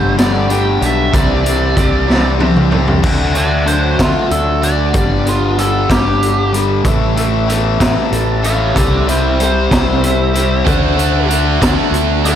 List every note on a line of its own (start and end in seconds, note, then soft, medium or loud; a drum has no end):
0.00 0.77 G1 medium
0.00 0.15 G2 medium
0.00 0.15 D3 medium
0.00 0.16 G3 medium
0.00 0.47 G3 medium
0.00 0.17 A3 medium
0.00 0.17 D4 medium
0.00 0.15 G4 medium
0.00 0.15 C5 medium
0.16 0.47 G2 medium
0.16 0.48 D3 medium
0.16 0.48 G3 loud
0.16 0.48 A3 medium
0.16 0.50 D4 medium
0.16 0.50 G4 medium
0.16 0.48 D5 loud
0.16 snare loud
0.16 closed hi-hat medium
0.48 0.79 G2 medium
0.48 0.80 D3 medium
0.48 1.11 G3 medium
0.48 0.80 G3 medium
0.48 0.81 A3 medium
0.48 0.81 D4 medium
0.48 0.78 G4 medium
0.48 0.83 G5 medium
0.48 closed hi-hat medium
0.79 1.12 B1 loud
0.79 1.11 G2 medium
0.79 1.11 D3 medium
0.79 1.11 G3 medium
0.79 1.12 A3 medium
0.79 1.12 D4 medium
0.79 1.10 G4 medium
0.79 closed hi-hat medium
0.86 1.16 E5 medium
1.11 1.73 C2 loud
1.11 1.76 C3 loud
1.11 1.43 C3 loud
1.11 1.73 E3 medium
1.11 1.43 G3 loud
1.11 1.44 C4 medium
1.11 1.44 C4 loud
1.11 1.42 D4 loud
1.11 1.41 G4 loud
1.11 2.37 D5 medium
1.11 kick loud
1.11 closed hi-hat medium
1.42 1.75 C3 medium
1.42 1.76 G3 medium
1.42 1.74 C4 medium
1.42 1.76 C4 medium
1.42 1.75 D4 medium
1.42 1.76 G4 medium
1.42 closed hi-hat medium
1.74 3.00 C2 medium
1.74 2.06 C3 medium
1.74 2.37 E3 medium
1.74 2.06 G3 loud
1.74 2.07 C4 medium
1.74 2.07 D4 medium
1.74 2.06 G4 medium
1.74 kick medium
1.74 closed hi-hat medium
2.07 2.38 C3 medium
2.07 2.39 G3 medium
2.07 2.39 C4 loud
2.07 2.38 C4 medium
2.07 2.39 D4 medium
2.07 2.40 G4 medium
2.07 snare medium
2.38 2.69 C3 medium
2.38 3.01 E3 medium
2.38 2.70 G3 medium
2.38 2.71 C4 medium
2.38 2.70 C4 medium
2.38 2.70 D4 medium
2.38 2.68 G4 medium
2.38 high tom medium
2.56 mid tom medium
2.70 3.01 C3 medium
2.70 3.01 G3 medium
2.70 3.01 C4 medium
2.70 3.02 C4 medium
2.70 3.01 D4 medium
2.70 3.01 G4 medium
2.70 mid tom medium
2.87 floor tom medium
3.02 3.95 D2 medium
3.02 3.33 D3 loud
3.02 3.34 A3 medium
3.02 3.34 D4 loud
3.02 kick loud
3.02 crash loud
3.34 3.64 D3 medium
3.34 3.98 A3 medium
3.34 3.65 A3 medium
3.34 3.66 D4 medium
3.34 3.67 D5 loud
3.34 closed hi-hat medium
3.66 3.98 D3 medium
3.66 4.92 F#3 medium
3.66 3.98 A3 medium
3.66 3.98 D4 loud
3.66 3.98 C5 medium
3.66 closed hi-hat medium
3.99 4.14 D2 medium
3.99 4.61 D3 medium
3.99 4.94 A3 medium
3.99 4.61 A3 loud
3.99 4.61 D4 loud
3.99 4.31 F4 medium
3.99 kick medium
3.99 snare loud
3.99 closed hi-hat medium
4.31 4.91 D2 medium
4.31 4.94 D4 medium
4.31 4.62 A4 medium
4.31 closed hi-hat medium
4.62 4.92 D3 medium
4.62 4.92 A3 medium
4.62 4.92 D4 medium
4.62 4.94 F#4 medium
4.62 4.94 D5 medium
4.62 closed hi-hat medium
4.93 5.86 G1 medium
4.93 5.24 G2 medium
4.93 5.24 D3 loud
4.93 5.56 G3 medium
4.93 5.24 G3 loud
4.93 kick loud
4.93 closed hi-hat medium
4.98 5.27 D5 medium
5.24 5.57 G2 medium
5.24 5.57 D3 medium
5.24 5.57 G3 medium
5.24 5.88 B3 medium
5.24 closed hi-hat medium
5.29 5.58 F4 medium
5.57 5.88 G2 medium
5.57 5.89 D3 medium
5.57 6.84 G3 medium
5.57 5.89 G3 loud
5.57 5.89 A4 medium
5.57 closed hi-hat medium
5.89 6.81 G1 medium
5.89 6.51 G2 loud
5.89 6.52 D3 loud
5.89 6.52 G3 loud
5.89 6.85 B3 medium
5.89 6.52 G4 medium
5.89 kick medium
5.89 snare loud
5.89 closed hi-hat medium
6.20 6.84 D4 medium
6.20 closed hi-hat medium
6.52 6.83 G2 medium
6.52 6.83 D3 medium
6.52 6.83 G3 medium
6.52 6.85 G4 medium
6.52 closed hi-hat medium
6.84 7.76 A1 medium
6.84 7.14 A2 medium
6.84 7.15 E3 loud
6.84 8.43 A3 medium
6.84 7.15 A3 loud
6.84 kick loud
6.84 closed hi-hat medium
7.15 7.46 A2 medium
7.15 7.47 E3 loud
7.15 7.47 A3 medium
7.15 8.76 E4 medium
7.15 closed hi-hat medium
7.47 7.79 A2 medium
7.47 7.79 E3 medium
7.47 7.79 A3 medium
7.47 8.75 B3 medium
7.47 closed hi-hat medium
7.80 7.95 A1 medium
7.80 8.41 A2 loud
7.80 8.41 E3 loud
7.80 8.42 A3 loud
7.80 kick medium
7.80 snare loud
7.80 closed hi-hat medium
8.12 8.72 A1 medium
8.12 8.76 A4 medium
8.12 closed hi-hat medium
8.42 8.73 A2 medium
8.42 8.73 E3 medium
8.42 8.73 A3 medium
8.42 8.76 A4 medium
8.42 8.76 C#5 medium
8.42 8.76 F5 medium
8.42 closed hi-hat medium
8.74 9.67 C2 medium
8.74 9.06 C3 medium
8.74 10.34 C3 medium
8.74 9.07 G3 medium
8.74 9.07 C4 loud
8.74 kick loud
8.74 closed hi-hat medium
8.78 9.07 A4 medium
8.78 9.08 D5 medium
9.07 9.38 C3 medium
9.07 9.38 G3 medium
9.07 9.69 C4 medium
9.07 9.39 C4 medium
9.07 9.38 E4 medium
9.07 9.40 C5 medium
9.07 closed hi-hat medium
9.39 9.69 C3 medium
9.39 9.70 G3 medium
9.39 10.67 G3 medium
9.39 9.70 C4 medium
9.39 closed hi-hat medium
9.43 11.28 C5 loud
9.70 10.62 C2 medium
9.70 10.32 C3 loud
9.70 10.33 G3 loud
9.70 10.66 C4 medium
9.70 10.34 C4 loud
9.70 kick medium
9.70 snare loud
9.70 closed hi-hat medium
10.01 10.66 E4 medium
10.01 closed hi-hat medium
10.34 10.64 C3 medium
10.34 10.64 G3 medium
10.34 10.65 C4 medium
10.34 10.66 G4 medium
10.34 closed hi-hat medium
10.65 11.58 D2 medium
10.65 10.95 D3 loud
10.65 10.95 A3 loud
10.65 10.96 D4 loud
10.65 kick loud
10.65 closed hi-hat medium
10.96 11.27 D3 medium
10.96 11.27 A3 medium
10.96 11.28 D4 loud
10.96 closed hi-hat medium
11.28 11.59 D3 medium
11.28 11.60 A3 medium
11.28 11.60 D4 medium
11.28 closed hi-hat medium
11.60 11.77 D2 medium
11.60 12.23 D3 loud
11.60 12.23 A3 loud
11.60 12.24 D4 loud
11.60 kick medium
11.60 snare loud
11.60 closed hi-hat medium
11.91 12.35 D2 medium
11.91 closed hi-hat medium
12.24 12.35 D3 medium
12.24 12.35 A3 medium
12.24 12.35 D4 medium
12.24 12.35 A4 medium
12.24 12.35 F5 medium
12.24 closed hi-hat medium